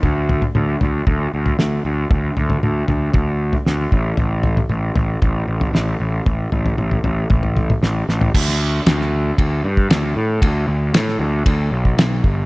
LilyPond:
<<
  \new Staff \with { instrumentName = "Picked electric bass" } { \clef bass \time 4/4 \key d \mixolydian \tempo 4 = 116 d,4 d,8 d,8 d,8 d,8 d,8 d,8 | d,8 d,8 d,8 d,8 d,4 d,8 a,,8 | a,,4 a,,8 a,,8 a,,8 a,,8 a,,8 a,,8 | a,,8 a,,8 a,,8 a,,8 a,,4 a,,8 a,,8 |
d,4 d,4 d,8 g,8 d,8 a,8 | d,8 d,8 a,8 d,8 d,8 b,,8 b,,8 g,,8 | }
  \new DrumStaff \with { instrumentName = "Drums" } \drummode { \time 4/4 <bd tomfh>8 tomfh16 tomfh16 toml8 tomfh8 <bd tomfh>8. tomfh16 sn4 | <bd tomfh>8 tomfh16 tomfh16 toml8 tomfh8 <bd tomfh>8. tomfh16 sn8 bd8 | tomfh8 tomfh16 tomfh16 toml8 tomfh8 <bd tomfh>8. tomfh16 sn4 | <bd tomfh>8 tomfh16 tomfh16 toml16 tomfh16 tomfh8 <bd tomfh>16 tomfh16 <tomfh toml>16 <tomfh toml>16 sn8 sn16 tomfh16 |
<cymc bd>16 sn8. <rb sn>16 sn8. <bd rb>8. bd16 <rb sn>4 | <bd rb>4 <rb sn>16 sn8. <bd rb>8. bd16 <rb sn>8 bd8 | }
>>